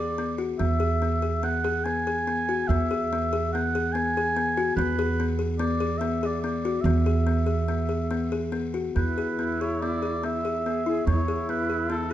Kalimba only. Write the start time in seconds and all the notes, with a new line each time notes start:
Already playing: G#4
0.18 B3
0.38 F#4
0.59 B3
0.80 G#4
1.02 B3
1.22 G#4
1.43 B3
1.64 G#4
1.86 B3
2.07 G#4
2.27 B3
2.49 F#4
2.70 B3
2.91 G#4
3.13 B3
3.33 G#4
3.55 B3
3.75 G#4
3.95 B3
4.17 G#4
4.36 B3
4.57 F#4
4.79 B3
4.99 G#4
5.20 B3
5.39 G#4
5.59 B3
5.80 G#4
6.01 B3
6.23 G#4
6.44 B3
6.65 F#4
6.85 B3
7.06 G#4
7.27 B3
7.46 G#4
7.68 B3
7.89 G#4
8.11 B3
8.32 G#4
8.52 B3
8.74 F#4
8.96 B3
9.18 G#4
9.39 B3
9.61 G#4
9.82 B3
10.02 G#4
10.23 B3
10.45 G#4
10.66 B3
10.86 E4
11.07 B3
11.28 G#4
11.49 B3
11.69 G#4
11.90 B3